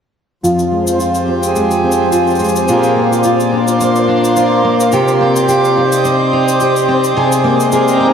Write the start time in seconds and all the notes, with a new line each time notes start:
0.43 F2 F3 F4 C5 C6, cabasa
0.59 cabasa
0.72 G#3
0.87 C4, cabasa
0.99 F4, cabasa
1.15 cabasa
1.23 G4
1.28 C4
1.43 G#4, cabasa
1.56 G#3, cabasa
1.71 cabasa
1.84 C4
1.92 cabasa
2.12 F4, cabasa
2.27 cabasa
2.30 cabasa
2.35 cabasa
2.39 G#3, cabasa
2.44 cabasa
2.49 cabasa
2.56 cabasa
2.68 A#2 A#3 F4, cabasa
2.76 F4
2.83 cabasa
2.96 A#3
3.12 D5, cabasa
3.23 F4, cabasa
3.40 cabasa
3.52 D4
3.68 C5, cabasa
3.81 A#3, cabasa
3.96 cabasa
4.08 D4
4.24 cabasa
4.36 F4, cabasa
4.65 A#3
4.80 cabasa
4.92 C3 C4 G4, cabasa
5.08 cabasa
5.21 C4 G5
5.36 cabasa
5.48 G4, cabasa
5.64 cabasa
5.77 D#4
5.92 D#5, cabasa
6.05 C4, cabasa
6.33 D#4
6.48 cabasa
6.60 G4, cabasa
6.76 cabasa
6.88 C4
7.04 cabasa
7.16 C3 G#4
7.32 cabasa
7.43 G#3 A#3
7.60 cabasa
7.72 G#4 A#4, cabasa
7.88 cabasa
8.01 C4 D#4